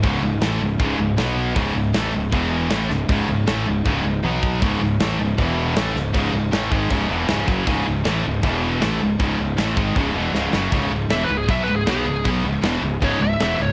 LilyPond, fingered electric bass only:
\new Staff \with { instrumentName = "Fingered electric bass" } { \clef bass \time 4/4 \key cis \minor \tempo 4 = 157 cis,,8 cis,,8 a,,8 cis,,8 cis,,8 cis,,8 b,,4 | cis,,8 cis,,8 a,,8 cis,,8 e,,4 a,,8 cis,,8 | cis,,8 cis,,8 a,,8 cis,,8 cis,,8 cis,,8 b,,4 | cis,,8 cis,,8 a,,8 cis,,8 e,,4 a,,8 cis,,8 |
cis,,8 cis,,8 a,,8 gis,,8 cis,,8 e,,8 cis,,8 fis,,8 | cis,,8 cis,,8 a,,8 cis,,8 e,,4 a,,8 cis,,8 | cis,,8 cis,,8 a,,8 gis,,8 cis,,8 e,,8 cis,,8 fis,,8 | cis,,8 cis,,8 e,,8 cis,,8 b,,8 cis,,8 b,,8 cis,,8 |
b,,8 cis,,8 e,,8 cis,,8 cis,,8 cis,,8 e,,8 cis,,8 | }